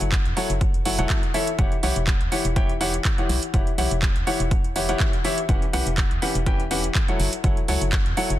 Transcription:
0.01 F#1, closed hi-hat
0.12 kick, clap, closed hi-hat
0.26 F#2, closed hi-hat
0.37 F#3 E4 A4 C#5 F#5, open hi-hat
0.50 F#1, closed hi-hat
0.61 kick, closed hi-hat
0.74 closed hi-hat
0.85 F#3 E4 A4 C#5 F#5, open hi-hat
0.99 E1 F#3 E4 A4 C#5 F#5, closed hi-hat
1.10 kick, clap, closed hi-hat
1.23 closed hi-hat
1.34 E3 E4 A4 C#5 E5, open hi-hat
1.47 closed hi-hat
1.59 E1 E3 E4 G4 C#5 F#5, kick, closed hi-hat
1.72 closed hi-hat
1.83 B1 E3 E4 G4 C#5 F#5, open hi-hat
1.96 E1, closed hi-hat
2.07 kick, clap, closed hi-hat
2.21 E2, closed hi-hat
2.32 E3 E4 G4 C#5 F#5, open hi-hat
2.45 E1, closed hi-hat
2.56 E3 E4 G4 C#5 G5, kick, closed hi-hat
2.69 closed hi-hat
2.81 E3 E4 G4 C#5 F#5, open hi-hat
2.94 closed hi-hat
3.05 kick, clap, closed hi-hat
3.18 E3 E4 G4 C#5 F#5, closed hi-hat
3.29 B1, open hi-hat
3.43 closed hi-hat
3.54 E1 E3 E4 G4 C#5 F#5, kick, closed hi-hat
3.67 closed hi-hat
3.78 B1 E3 E4 G4 C#5 F#5, open hi-hat
3.91 E1, closed hi-hat
4.02 kick, clap, closed hi-hat
4.16 E2, closed hi-hat
4.27 E3 E4 G4 C#5 F#5, open hi-hat
4.40 E1, closed hi-hat
4.51 kick, closed hi-hat
4.64 closed hi-hat
4.76 E3 E4 G4 C#5 F#5, open hi-hat
4.89 E3 E4 G4 C#5 F#5, closed hi-hat
5.00 kick, clap, closed hi-hat
5.13 closed hi-hat
5.24 E3 E4 G4 C#5 E5, open hi-hat
5.38 closed hi-hat
5.49 E1 E3 C#4 G4 B4 F#5, kick, closed hi-hat
5.62 closed hi-hat
5.73 B1 E3 C#4 G4 B4 F#5, open hi-hat
5.86 E1, closed hi-hat
5.98 kick, clap, closed hi-hat
6.11 E2, closed hi-hat
6.22 E3 C#4 G4 B4 F#5, open hi-hat
6.35 E1, closed hi-hat
6.46 E3 C#4 G4 B4 G5, kick, closed hi-hat
6.60 closed hi-hat
6.71 E3 C#4 G4 B4 F#5, open hi-hat
6.84 closed hi-hat
6.95 kick, clap, closed hi-hat
7.08 F#3 E4 A4 C#5 F#5, closed hi-hat
7.20 F#1, open hi-hat
7.33 closed hi-hat
7.44 F#1 F#3 E4 A4 C#5 F#5, kick, closed hi-hat
7.57 closed hi-hat
7.68 C#2 F#3 E4 A4 C#5 F#5, open hi-hat
7.81 F#1, closed hi-hat
7.92 kick, clap, closed hi-hat
8.06 F#2, closed hi-hat
8.17 F#3 E4 A4 C#5 F#5, open hi-hat
8.30 F#1, closed hi-hat

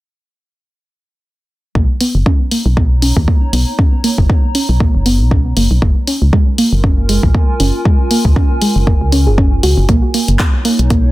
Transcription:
1.75 B1 A#3 D#4, kick
1.90 A#5
2.01 B3, open hi-hat
2.15 F#1
2.26 C#4 C#5, kick
2.51 A#3, open hi-hat
2.66 B1
2.77 B3, kick
3.02 C#4, open hi-hat
3.17 D#2, kick
3.28 A#3, kick
3.53 B1 B3, open hi-hat
3.78 C#4, kick
4.04 A#3, open hi-hat
4.18 F#1, kick
4.29 B3, kick
4.55 C#4, open hi-hat
4.69 B1
4.80 A#3, kick
4.95 F#1
5.06 B3, open hi-hat
5.20 B1
5.31 C#4, kick
5.57 F#1 A#3, open hi-hat
5.71 B1
5.82 F#1 A#3 F4, kick
6.01 A#4
6.07 C#4, open hi-hat
6.22 C#2
6.33 G#3 G#5, kick
6.58 A#3, open hi-hat
6.73 F#1
6.84 C#4, kick
7.09 G#3, open hi-hat
7.23 A#1, kick
7.35 A#3, kick
7.60 F#1 C#4, open hi-hat
7.85 G#3, kick
8.11 A#3, open hi-hat
8.25 C#2, kick
8.36 C#4, kick
8.62 G#3, open hi-hat
8.76 F#1
8.87 A#3, kick
9.01 C#2
9.12 C#4, open hi-hat
9.27 F#1 G#4
9.38 C#4, kick
9.63 C#2 F#4, open hi-hat
9.78 F#1
9.89 B1 A#3 D#4, kick, closed hi-hat
9.98 C#5
10.14 A#3, open hi-hat
10.28 F#1, closed hi-hat
10.39 B3, kick, clap, closed hi-hat
10.64 A#3 A#5, open hi-hat
10.79 B1, closed hi-hat
10.90 A#3, kick, closed hi-hat

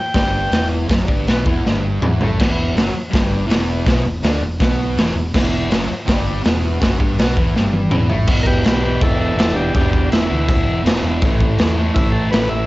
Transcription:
Already playing: G5
0.14 G1 G2 G3, kick, snare, open hi-hat
0.52 E1 E2 E3, snare, open hi-hat
0.89 F#1 F#2 F#3, kick, snare, open hi-hat
1.06 G1 G2 G3, kick
1.27 B1 B2 B3, snare, open hi-hat
1.45 E1 E2 E3, kick
1.64 G1 G2 G3, snare
2.02 E1 E2 E3, mid tom
2.21 A1 A2 A3, floor tom
2.39 E1 E2 E3, kick, snare, crash
2.76 F#1 F#2 F#3, snare, open hi-hat
2.93 muted distorted electric guitar stroke, muted fingered electric bass stroke
3.10 G1 G2 G3, kick, open hi-hat
3.15 snare
3.46 E1 E2 E3, open hi-hat
3.51 snare
3.85 B1 B2 B3, kick, snare, open hi-hat
4.04 E1 E2
4.22 D2 D3 D4, snare, open hi-hat
4.41 E1 E2
4.59 B1 B2 B3, kick, snare, open hi-hat
4.97 E1 E2 E3, snare, open hi-hat
5.15 E1 E2
5.34 E1 E2 E3, kick, snare, crash
5.71 F#1 F#2 F#3, snare, open hi-hat
5.89 muted distorted electric guitar stroke, muted fingered electric bass stroke
6.06 G1 G2 G3, kick, snare, open hi-hat
6.43 E1 E2 E3, snare, open hi-hat
6.80 F#1 F#2 F#3, kick, snare, open hi-hat
6.98 G1 G2 G3, kick
7.17 B1 B2 B3, snare, open hi-hat
7.36 E1 E2 E3, kick
7.55 G1 G2 G3, snare
7.73 high tom
7.91 E1 E2 E3, mid tom
8.08 A1 A2 A3, floor tom
8.27 E1 E2 B2, kick, crash
8.31 E3
8.43 G4 A#4, kick
8.47 B4
8.64 B1 G4 B4, snare, crash
8.81 B2 E3 G4
8.85 E2 B4
9.01 E1 E4 A4, kick, crash
9.20 E4 A4
9.36 E1 E2 B2 E4 A4, snare, crash
9.41 E3
9.55 E1 D4 G4
9.74 E1 E2 B2 D4 G4, kick, crash
9.79 E3
9.91 E1 D4 G4, kick
10.11 E1 E4, snare, crash
10.28 D2 B2 E3
10.33 E2
10.48 D2, kick, crash
10.67 E1
10.83 E1 E2 B2, crash
10.87 E3, snare
11.03 E1
11.22 A1 A2 E3, kick, crash
11.26 A3
11.41 kick
11.58 E2, snare, crash
11.77 A2 E3 A3
11.95 A1 E4, kick, crash
12.12 A4
12.31 A1 A2 E3 B4, snare, crash
12.36 A3
12.49 A1 E5

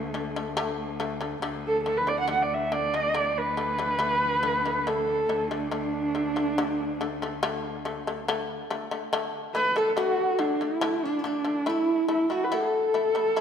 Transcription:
Already playing: D2 A3
0.14 D3 A3
0.36 D3 A3
0.57 D3 A3
1.00 D3 A3
1.21 D3 A3
1.42 D2 D3 A3
1.67 A4
1.83 D3 A3 A4
1.97 B4
2.07 D3 A3 D5
2.20 F#5
2.28 D3 A3 F#5
2.43 D5
2.54 E5
2.72 D3 A3 D5
2.94 D3 A3
3.14 D3 A3
3.37 B4
3.57 D3 A3
3.79 D3 A3
3.99 D3 A3
4.43 D3 A3
4.65 D3 A3
4.87 D3 A3 A4
5.29 D3 A3
5.51 D3 A3 D4
5.71 D3 A3
6.15 D3 A3
6.36 D3 A3
6.58 D3 A3
7.01 D3 A3
7.22 D3 A3
7.43 D3 A3
7.85 D3 A3
8.07 D3 A3
8.28 D3 A3
8.70 D3 A3
8.91 D3 A3
9.13 D3 A3
9.55 D3 A3 B4
9.76 D3 A3 A4
9.90 A4
9.97 D3 A3 F#4
10.39 D3 A3 D4
10.61 D3 A3 E4
10.81 D3 A3
11.03 D4
11.19 E4
11.24 D3 A3 D4
11.44 D3 A3
11.66 A3 E4
12.08 A3 E4
12.30 A3 E4 F#4
12.44 B4
12.52 A3 E4 A4
12.94 A3 E4
13.15 A3 E4
13.36 A3 E4

